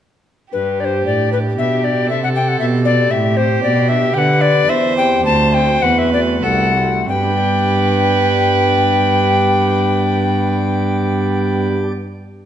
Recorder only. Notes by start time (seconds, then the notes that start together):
0.53 B4
0.80 D5
0.85 C5
1.06 D5
1.33 B4
1.58 E5
1.84 D5
2.10 E5
2.24 F#5
2.35 G5
2.48 F#5
2.59 E5
2.85 D5
3.11 E5
3.37 C5
3.63 D5
3.89 E5
4.14 G5
4.18 F#5
4.41 D5
4.69 E5
4.97 G5
5.25 A5
5.54 G5
5.82 F#5
5.99 E5
6.13 D5
6.43 F#5
7.09 G5